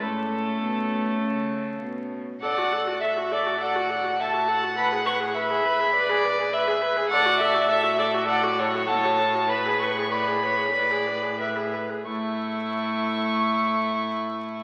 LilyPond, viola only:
\new Staff \with { instrumentName = "Viola" } { \time 4/4 \key a \major \tempo 4 = 100 a2.~ a8. r16 | a'16 fis'16 a'16 fis'16 a'16 fis'16 a'16 fis'16 a'16 fis'16 a'16 fis'16 a'16 fis'16 a'16 fis'16 | b'16 gis'16 b'16 gis'16 b'16 gis'16 b'16 gis'16 b'16 gis'16 b'16 gis'16 b'16 gis'16 b'16 gis'16 | a'16 fis'16 a'16 fis'16 a'16 fis'16 a'16 fis'16 a'16 fis'16 a'16 fis'16 a'16 fis'16 a'16 fis'16 |
b'16 gis'16 b'16 gis'16 b'16 gis'16 b'16 gis'16 b'16 gis'16 b'16 gis'16 b'16 gis'16 b'16 gis'16 | a1 | }